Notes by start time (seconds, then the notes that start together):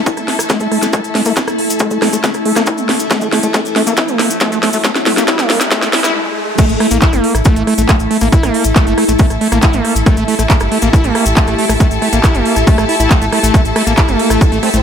Already playing: A3 E4 A4 E5 A5, riser
0.06 E4, kick, closed hi-hat, maracas
0.17 G1 A3, cross-stick, closed hi-hat, maracas
0.28 A#3, snare, open hi-hat
0.39 A1, cross-stick, closed hi-hat, maracas
0.49 A3, kick, snare, closed hi-hat, maracas
0.60 A1 A3, closed hi-hat, maracas
0.72 A3, cross-stick, open hi-hat
0.82 A1 A3, snare, closed hi-hat, maracas
0.93 A3, kick, cross-stick, closed hi-hat, maracas
1.04 A1, closed hi-hat, maracas
1.15 A3, snare, open hi-hat
1.25 A1 A#3, cross-stick, open hi-hat, maracas
1.36 E4, kick, snare, closed hi-hat, maracas
1.48 A1 A3, cross-stick, closed hi-hat, maracas
1.58 A#3, open hi-hat
1.69 A1, closed hi-hat, maracas
1.79 A3, kick, cross-stick, closed hi-hat, maracas
1.91 G1 A3, closed hi-hat, maracas
2.02 A3, cross-stick, snare, open hi-hat
2.13 A1 A3, closed hi-hat, maracas
2.24 A3, kick, snare, closed hi-hat, maracas
2.34 A1, cross-stick, closed hi-hat, maracas
2.45 A3, open hi-hat
2.56 A1 A#3, cross-stick, snare, closed hi-hat, maracas
2.66 E4, kick, closed hi-hat, maracas
2.78 A1 A3, closed hi-hat, maracas
2.89 A#3, cross-stick, snare, open hi-hat
3.00 A1, closed hi-hat, maracas
3.10 A3, kick, snare, closed hi-hat, maracas
3.21 A1 A3, closed hi-hat, maracas
3.32 A3, snare, open hi-hat
3.43 A1 A3, closed hi-hat, maracas
3.54 A3, kick, snare, closed hi-hat, maracas
3.65 G1, closed hi-hat, maracas
3.76 A3, snare, open hi-hat
3.87 A1 A#3, closed hi-hat, maracas
3.97 E4, kick, snare, closed hi-hat, maracas
4.08 A1 A3, closed hi-hat, maracas
4.19 A#3, snare, open hi-hat
4.30 A1, closed hi-hat, maracas
4.40 A3, kick, snare, closed hi-hat, maracas
4.52 A1 A3, closed hi-hat, maracas
4.63 A3, snare, open hi-hat
4.73 A1 A3, open hi-hat, maracas
4.84 A3, kick, snare, closed hi-hat, maracas
4.95 A1, snare, closed hi-hat, maracas
5.06 A3, snare, open hi-hat
5.17 A1 A#3, snare, maracas
5.28 E4, kick, snare, closed hi-hat, maracas
5.39 A3, snare, closed hi-hat, maracas
5.50 A#3, snare, open hi-hat
5.61 A1, snare, closed hi-hat, maracas
5.71 A3, kick, snare, closed hi-hat, maracas
5.82 A3, snare, closed hi-hat, maracas
5.93 E4, snare, open hi-hat
6.04 A1 E4, snare, maracas
6.58 A3 E4, kick, cross-stick, closed hi-hat, crash, maracas
6.69 A1, closed hi-hat, maracas
6.80 A3 A4, cross-stick, open hi-hat
6.91 A1 A#3, closed hi-hat, maracas
7.02 E4, kick, clap, closed hi-hat, maracas
7.13 G1 A3, cross-stick, closed hi-hat, maracas
7.24 A#3, open hi-hat
7.35 A1, cross-stick, closed hi-hat, maracas
7.45 A3, kick, closed hi-hat, maracas
7.56 A1 A3, closed hi-hat, maracas
7.62 E5 A5
7.67 A3, cross-stick, open hi-hat
7.78 A1 A3, closed hi-hat, maracas
7.89 A3, kick, cross-stick, clap, closed hi-hat, maracas
8.00 A1, closed hi-hat, maracas
8.11 A3, open hi-hat
8.21 A1 A#3, cross-stick, open hi-hat, maracas
8.32 E4, kick, closed hi-hat, maracas
8.43 A1 A3, cross-stick, closed hi-hat, maracas
8.54 A#3, open hi-hat
8.64 A1, closed hi-hat, maracas
8.76 A3, kick, cross-stick, clap, closed hi-hat, maracas
8.87 G1 A3, closed hi-hat, maracas
8.98 A3, cross-stick, open hi-hat
9.09 A1 A3, closed hi-hat, maracas
9.19 A3, kick, open hi-hat, maracas
9.30 A1, cross-stick, closed hi-hat, maracas
9.41 A3, open hi-hat
9.52 A1 A#3, cross-stick, closed hi-hat, maracas
9.62 E4, kick, clap, closed hi-hat, maracas
9.73 A1 A3, closed hi-hat, maracas
9.85 A#3, cross-stick, open hi-hat
9.95 A1, closed hi-hat, maracas
10.06 A3 G4, kick, cross-stick, closed hi-hat, maracas
10.17 A1 A3, closed hi-hat, maracas
10.28 A3, open hi-hat
10.39 A1 A3, cross-stick, closed hi-hat, maracas
10.50 A3, kick, clap, closed hi-hat, maracas
10.60 G1, cross-stick, closed hi-hat, maracas
10.72 A3, open hi-hat
10.82 A1 A#3, closed hi-hat, maracas
10.93 E4, kick, cross-stick, closed hi-hat, maracas
11.04 A1 A3, closed hi-hat, maracas
11.15 A#3, cross-stick, open hi-hat
11.26 A1, closed hi-hat, maracas
11.36 A3, kick, clap, closed hi-hat, maracas
11.47 A1 A3, cross-stick, closed hi-hat, maracas
11.58 A3, open hi-hat
11.69 A1 A3, cross-stick, open hi-hat, maracas
11.80 A3, kick, closed hi-hat, maracas
11.91 A1, closed hi-hat, maracas
12.02 A3, cross-stick, open hi-hat
12.13 A1 A#3, closed hi-hat, maracas
12.24 E4, kick, cross-stick, clap, closed hi-hat, maracas
12.34 G1 A3, closed hi-hat, maracas
12.45 A#3, open hi-hat
12.56 A1, cross-stick, closed hi-hat, maracas
12.67 A3, kick, open hi-hat, maracas
12.78 A1 A3, cross-stick, closed hi-hat, maracas
12.89 E4, open hi-hat
13.00 A1 E4, closed hi-hat, maracas
13.11 A3, kick, cross-stick, clap, closed hi-hat, maracas
13.22 A1 A3, closed hi-hat, maracas
13.32 A3, cross-stick, open hi-hat
13.43 A1 A3, closed hi-hat, maracas
13.54 A3 E4, kick, cross-stick, closed hi-hat, maracas
13.65 A1, closed hi-hat, maracas
13.76 A3, cross-stick, open hi-hat, ride
13.87 A1 A#3, maracas
13.97 E4, kick, clap, closed hi-hat, maracas
14.08 G1 A3, cross-stick, closed hi-hat, maracas
14.19 A#3, open hi-hat, ride
14.30 A1 A3, cross-stick, closed hi-hat, maracas
14.41 kick, closed hi-hat, maracas
14.52 A1 A3, closed hi-hat, maracas
14.63 A3 C4, cross-stick, open hi-hat, ride
14.74 A1 A3 C4, closed hi-hat, maracas